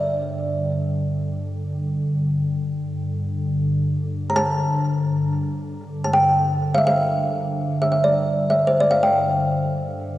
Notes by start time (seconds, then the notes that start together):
Already playing: G2 D3 D5
4.30 A#5
4.36 A5
6.04 A5
6.14 G5
6.75 E5 F5
6.87 F5
7.82 E5
7.92 E5
8.04 D5
8.50 E5
8.67 C5
8.80 D5
8.91 F5
9.03 G5